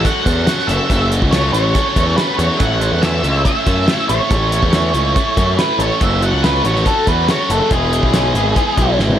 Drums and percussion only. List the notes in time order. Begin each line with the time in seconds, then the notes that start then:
0.05 kick, closed hi-hat
0.26 kick, closed hi-hat
0.47 snare, closed hi-hat
0.59 snare
0.69 closed hi-hat
0.90 kick, closed hi-hat
1.12 closed hi-hat
1.22 kick
1.33 snare, closed hi-hat
1.54 closed hi-hat
1.75 kick, closed hi-hat
1.96 kick, closed hi-hat
2.18 snare, closed hi-hat
2.39 closed hi-hat
2.60 kick, closed hi-hat
2.81 closed hi-hat
3.03 snare, closed hi-hat
3.24 closed hi-hat
3.45 kick, closed hi-hat
3.67 kick, closed hi-hat
3.88 snare, closed hi-hat
4.09 closed hi-hat
4.31 kick, closed hi-hat
4.52 closed hi-hat
4.63 kick
4.73 snare, closed hi-hat
4.94 closed hi-hat
5.16 kick, closed hi-hat
5.37 kick, closed hi-hat
5.59 snare, closed hi-hat
5.80 closed hi-hat
6.01 kick, closed hi-hat
6.22 closed hi-hat
6.44 snare, closed hi-hat
6.65 closed hi-hat
6.76 snare
6.86 kick, closed hi-hat
7.07 kick, closed hi-hat
7.28 snare, closed hi-hat
7.50 closed hi-hat
7.71 kick, closed hi-hat
7.93 closed hi-hat
8.03 kick
8.14 snare, closed hi-hat
8.35 closed hi-hat
8.56 kick, closed hi-hat
8.78 kick, closed hi-hat
8.99 snare
9.10 high tom